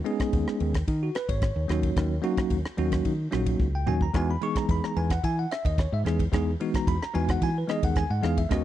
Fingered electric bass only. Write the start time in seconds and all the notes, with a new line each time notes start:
0.33 D#2
0.61 D#2
0.88 D#3
1.29 G#1
1.56 D#2
1.70 D#2
1.96 D#2
2.51 D#2
2.78 D#2
3.05 D#3
3.33 A#1
3.60 C#2
3.88 D#2
4.14 E2
4.69 E2
4.97 E2
5.24 E3
5.65 D#2
5.92 G#2
6.06 E2
6.33 E2
6.87 E2
7.15 E2
7.42 E3
7.83 D#2
8.10 G#2
8.24 E2
8.51 D#2